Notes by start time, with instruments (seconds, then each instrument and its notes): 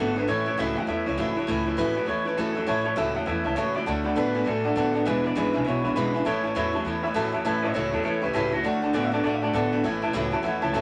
Already playing: steel-string acoustic guitar D3
0.00 upright bass G#1, clean electric guitar D3 B3 A4, steel-string acoustic guitar A3 D4 F#4
0.16 clean electric guitar D3 B3 B4, steel-string acoustic guitar A3 D4 F#4
0.28 upright bass A1, steel-string acoustic guitar A2 E3 A3 C#4 E4, clean electric guitar A2 E3 C#5
0.46 clean electric guitar A2 E3 C#5, steel-string acoustic guitar A3 C#4 E4
0.58 upright bass C#2, steel-string acoustic guitar A2 E3 A3 C#4 E4, clean electric guitar A2 F#3 E5
0.76 upright bass E2, clean electric guitar A2 F#3 F#5, steel-string acoustic guitar A3 C#4 E4
0.87 upright bass E2, clean electric guitar A2 E3 E5, steel-string acoustic guitar E3 A3 C#4 E4
1.06 upright bass C#2, clean electric guitar A2 E3 C#5, steel-string acoustic guitar A3 C#4 E4
1.18 upright bass F#1, steel-string acoustic guitar A2 E3 A3 C#4 E4, clean electric guitar A2 F#3 E5
1.36 clean electric guitar A2 F#3 C#5, steel-string acoustic guitar A3 C#4 E4
1.47 upright bass C#2, steel-string acoustic guitar A2 E3 A3 C#4 E4, clean electric guitar A2 E3
1.66 clean electric guitar A2 E3, steel-string acoustic guitar A3 C#4 E4
1.77 upright bass E2, steel-string acoustic guitar A2 E3 A3 C#4 E4, clean electric guitar A2 F#3 B4
1.95 clean electric guitar A2 F#3, steel-string acoustic guitar A3 C#4 E4
2.06 upright bass E2, clean electric guitar A2 E3 C#5, steel-string acoustic guitar E3 A3 C#4 E4
2.25 clean electric guitar A2 E3 B4, steel-string acoustic guitar A3 C#4 E4
2.37 upright bass E2, clean electric guitar A2 F#3 A4, steel-string acoustic guitar A2 E3 A3 C#4 E4
2.55 clean electric guitar A2 F#3, steel-string acoustic guitar A3 C#4 E4
2.67 upright bass A1, steel-string acoustic guitar A2 E3 A3 C#4 E4, clean electric guitar A2 E3 C#5, upright piano C#5 E5 A5
2.84 clean electric guitar A2 E3 C#5, steel-string acoustic guitar A3 C#4 E4, upright piano C#5 E5 A5
2.96 upright bass C#2, steel-string acoustic guitar A2 E3 A3 C#4 E4, clean electric guitar A2 F#3 E5, upright piano C#5 E5 A5
3.15 upright bass E2, clean electric guitar A2 F#3 F#5, steel-string acoustic guitar A3 C#4 E4, upright piano C#5 E5 A5
3.26 upright bass E2, clean electric guitar A2 E3 E5, steel-string acoustic guitar E3 A3 C#4 E4, upright piano C#5 E5 A5
3.44 upright bass C#2, clean electric guitar A2 E3 E5, steel-string acoustic guitar A3 C#4 E4, upright piano C#5 E5 A5
3.56 upright bass F#1, steel-string acoustic guitar A2 E3 A3 C#4 E4, clean electric guitar A2 F#3 C#5, upright piano C#5 E5 A5
3.74 clean electric guitar A2 F#3 D5, steel-string acoustic guitar A3 C#4 E4, upright piano C#5 E5 B5
3.86 upright bass D2, steel-string acoustic guitar D3 A3 D4 F#4, clean electric guitar D3 A3, upright piano D5 F#5 A5
4.04 clean electric guitar D3 A3, steel-string acoustic guitar A3 D4 F#4, upright piano D5 F#5 B5
4.15 upright bass A2, steel-string acoustic guitar D3 A3 D4 F#4, clean electric guitar D3 B3 B4, upright piano D5 F#5 A5
4.34 clean electric guitar D3 B3, steel-string acoustic guitar A3 D4 F#4, upright piano D5 F#5 G#5
4.45 upright bass A2, steel-string acoustic guitar D3 A3 D4 F#4, clean electric guitar D3 A3 A4, upright piano D5 F#5 G#5
4.64 clean electric guitar D3 A3, steel-string acoustic guitar A3 D4 F#4, upright piano D5 F#5 A5
4.76 upright bass A2, steel-string acoustic guitar D3 A3 D4 F#4, clean electric guitar D3 B3 A4, upright piano D5 F#5 A5
4.94 clean electric guitar D3 B3, steel-string acoustic guitar A3 D4 F#4, upright piano D5 F#5 A5
5.05 upright bass E1, steel-string acoustic guitar E2 B2 E3 G#3 D4 E4, clean electric guitar E2 B2 B4, upright piano B4 E5 G#5
5.24 clean electric guitar E2 B2 D5, steel-string acoustic guitar E3 G#3 D4 E4, upright piano B4 E5 B5
5.35 upright bass G#1, clean electric guitar E2 C#3 B4, steel-string acoustic guitar E2 B2 E3 G#3 D4 E4, upright piano B4 E5 G#5
5.53 upright bass B1, clean electric guitar E2 C#3, steel-string acoustic guitar E3 G#3 D4 E4, upright piano B4 E5 G#5
5.65 upright bass B1, clean electric guitar E2 B2 C#5, steel-string acoustic guitar E3 G#3 D4 E4, upright piano B4 E5 G#5
5.83 upright bass G#1, clean electric guitar E2 B2, steel-string acoustic guitar G#3 D4 E4, upright piano B4 E5 B5
5.88 steel-string acoustic guitar E3
5.95 upright bass B1, clean electric guitar E2 C#3 B4, steel-string acoustic guitar E2 B2 E3 G#3 D4 E4, upright piano B4 E5 B5
6.13 clean electric guitar E2 C#3, steel-string acoustic guitar G#3 D4 E4, upright piano B4 E5 G#5
6.17 steel-string acoustic guitar E3
6.25 upright bass A1, steel-string acoustic guitar A2 E3 A3 C#4 E4, clean electric guitar A2 E3 C#5, upright piano C#5 E5 A5
6.43 clean electric guitar A2 E3, steel-string acoustic guitar C#4 E4, upright piano C#5 E5 A5
6.47 steel-string acoustic guitar A3
6.55 upright bass E2, steel-string acoustic guitar A2 E3 A3 C#4 E4, clean electric guitar A2 F#3 C#5, upright piano C#5 E5 B5
6.73 clean electric guitar A2 F#3, steel-string acoustic guitar A3 C#4 E4, upright piano C#5 E5 A5
6.85 upright bass E2, clean electric guitar A2 E3, steel-string acoustic guitar E3 A3 C#4 E4, upright piano C#5 E5 A5
7.03 clean electric guitar A2 E3, steel-string acoustic guitar C#4 E4, upright piano C#5 E5 B5
7.07 steel-string acoustic guitar A3
7.14 upright bass E2, steel-string acoustic guitar A2 E3 A3 C#4 E4, clean electric guitar A2 F#3, upright piano C#5 E5 A5
7.32 clean electric guitar A2 F#3, steel-string acoustic guitar A3 C#4 E4, upright piano C#5 E5 A5
7.45 upright bass A1, steel-string acoustic guitar A2 E3 A3 C#4 E4, clean electric guitar A2 E3, upright piano C#5 E5 A5
7.62 clean electric guitar A2 E3 C#5 E5, steel-string acoustic guitar A3 C#4 E4, upright piano C#5 E5 A5
7.74 upright bass C#2, steel-string acoustic guitar A2 E3 A3 C#4 E4, clean electric guitar A2 F#3 C#5 E5, upright piano C#5 E5 A5
7.92 upright bass E2, clean electric guitar A2 F#3 A4 C#5, steel-string acoustic guitar A3 C#4 E4, upright piano C#5 E5 A5
8.03 upright bass E2, clean electric guitar A2 E3 A4 C#5, steel-string acoustic guitar E3 A3 C#4 E4, upright piano C#5 E5 A5
8.22 upright bass C#2, clean electric guitar A2 E3 G4 B4, steel-string acoustic guitar A3 C#4 E4, upright piano C#5 E5 B5
8.33 upright bass C#2, steel-string acoustic guitar A2 E3 A3 C#4 E4, clean electric guitar A2 F#3 G4 B4, upright piano C#5 E5 A5
8.52 clean electric guitar A2 F#3 F#4, steel-string acoustic guitar A3 C#4 E4, upright piano C#5 E5 A5
8.63 upright bass D2, steel-string acoustic guitar D3 A3 D4 F#4, clean electric guitar D3 A3, upright piano D5 F#5 A5
8.82 clean electric guitar D3 A3, steel-string acoustic guitar A3 D4 F#4, upright piano D5 F#5 A5
8.93 upright bass A2, steel-string acoustic guitar D3 A3 D4 F#4, clean electric guitar D3 B3 D5, upright piano D5 F#5 G#5
9.05 clean electric guitar E5
9.12 clean electric guitar D3 B3 D5, steel-string acoustic guitar A3 D4 F#4, upright piano D5 F#5 A5
9.24 upright bass A2, steel-string acoustic guitar D3 A3 D4 F#4, clean electric guitar D3 A3 D5, upright piano D5 F#5 A5
9.34 clean electric guitar E5
9.42 clean electric guitar D3 A3 D5, steel-string acoustic guitar A3 D4 F#4, upright piano D5 F#5 A5
9.53 upright bass A2, clean electric guitar D3 B3 A4, steel-string acoustic guitar D3 A3 D4 F#4, upright piano D5 F#5 A5
9.72 clean electric guitar D3 B3, steel-string acoustic guitar A3 D4 F#4, upright piano D5 F#5 A5
9.83 upright bass A1, steel-string acoustic guitar A2 E3 A3 C#4 E4, clean electric guitar A2 E3, upright piano C#5 E5 A5
10.02 clean electric guitar A2 E3, steel-string acoustic guitar A3 C#4 E4, upright piano C#5 E5 A5
10.13 upright bass C#2, steel-string acoustic guitar A2 E3 A3 C#4 E4, clean electric guitar A2 F#3, upright piano C#5 E5 B5
10.32 upright bass E2, clean electric guitar A2 F#3, steel-string acoustic guitar A3 C#4 E4, upright piano C#5 E5 A5
10.43 upright bass E2, clean electric guitar A2 E3, steel-string acoustic guitar E3 A3 C#4 E4, upright piano C#5 E5 F#5
10.61 upright bass C#2, clean electric guitar A2 E3, steel-string acoustic guitar A3 C#4 E4, upright piano C#5 E5 A5
10.72 upright bass F#1, clean electric guitar A2 F#3 A5, steel-string acoustic guitar A2 E3 A3 C#4 E4, upright piano C#5 E5 A5